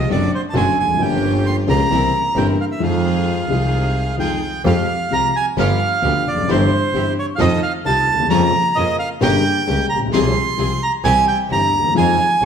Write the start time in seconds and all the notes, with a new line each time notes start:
0.09 F#1 F#2 D3 F#3 A3 C4 D4 F#4 D5
0.35 C5
0.50 C4 F#4 A5
0.54 F#1 F#2 D3 F#3 A3 C4 D4 F#4 G#5
0.78 F1 G#5
0.82 E2
0.87 F2
0.94 F#2 F3
0.99 G1 G2 A#3 C#4 F4 G4 G5
1.46 C6
1.67 C#2 C#3 F3 A#3 C#4 F4 G4 A#5
1.89 C2 C3 E3 A#3 C4 E4 G4 A#4
2.35 G1 G2 E3 A#3 C4 E4 G4 A#4 G5
2.61 F5
2.72 E5
2.78 F2 D#3 F3 G#3 C4 D#4 F4 G#4
2.83 F5
3.47 C2 C3 D#3 G#3 C4 D#4 F4 G#4
4.17 F2 D#3 F3 G#3 C4 D#4 F4 G#4 G5
4.64 F2 F3 G#3 C4 F4 G4 F5
5.10 C2 C3 F3 G#3 C4 F4 G4 A#5
5.36 G#5
5.57 G1 G2 F3 B3 D4 F4 G4 F5
6.02 D2 D3 F3 B3 D4 F4 G4
6.25 F1 D5
6.32 E2
6.37 F2
6.41 F#2
6.48 G1 G2 E3 G3 C4 E4 G4 C5
6.93 G1 G2 E3 G3 C4 E4 G4
7.19 C#5
7.36 F2 D#3 F3 A3 C4 D#4 F4 A4 F5
7.40 F2 D#5
7.63 F5
7.85 C2 C3 D#3 A3 C4 D#4 F4 A4 A5
8.08 D#2
8.13 D2
8.19 D#2
8.25 E2
8.30 F2 C#3 F3 A#3 C#4 F4 A#4 A#5
8.75 F2 C#3 F3 A#3 C#4 F4 A#4 D#5
8.99 F5
9.21 G1 G2 C#3 G3 A#3 C#4 G4 A#4 G5
9.66 C#2 C#3 G3 A#3 C#4 G4 A#4
9.89 A#1 A#5
9.95 A1
10.02 A#1
10.07 B1
10.12 C2 C3 F3 G#3 C4 F4 G#4 C6
10.57 C2 C3 F3 G#3 C4 F4 G#4
10.83 A#5
11.04 C2 C3 E3 G3 C4 E4 G4 G#5
11.28 G5
11.49 G1 G2 E3 G3 C4 E4 G4 A#5
11.72 D#2
11.79 D2
11.84 D#2
11.90 E2
11.95 F2 D#3 F3 G#3 C4 D#4 F4 G#5
12.41 C2 C3 D#3 G#3 C4 D#4 F4